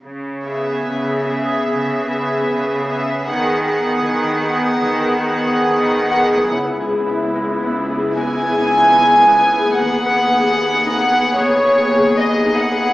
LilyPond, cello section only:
\new Staff \with { instrumentName = "Cello section" } { \clef bass \time 4/4 \key cis \dorian \tempo 4 = 74 cis4 cis4 cis4 cis4 | dis4 dis4 dis4 dis4 | cis,1 | dis,1 | }